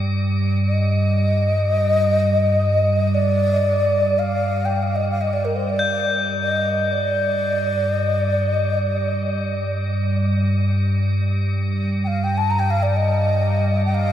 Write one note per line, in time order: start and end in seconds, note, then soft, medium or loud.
0.00 5.42 G2 medium
0.00 5.41 G3 medium
0.68 3.16 D#5 medium
3.14 4.20 D5 medium
4.19 4.67 F5 medium
4.65 4.84 G5 medium
4.83 4.97 F5 medium
4.96 5.08 D#5 medium
5.11 5.23 F5 medium
5.21 5.35 D#5 medium
5.33 5.46 D5 medium
5.43 14.12 G2 medium
5.43 14.12 G3 medium
5.43 5.57 A#4 medium
5.56 5.71 C5 medium
5.69 6.14 D5 medium
5.79 13.37 G6 soft
6.42 6.93 D#5 medium
6.92 7.98 D5 medium
7.98 8.20 D#5 medium
8.20 8.56 D5 medium
8.56 8.78 D#5 medium
8.78 9.82 D5 medium
12.04 12.25 F5 medium
12.04 12.09 G5 medium
12.24 12.39 G5 medium
12.38 12.52 A5 medium
12.50 12.61 A#5 medium
12.59 12.72 G5 medium
12.70 12.84 F5 medium
12.83 12.98 D5 medium
12.96 13.85 D#5 medium
13.85 13.96 G5 medium
13.95 14.12 F5 medium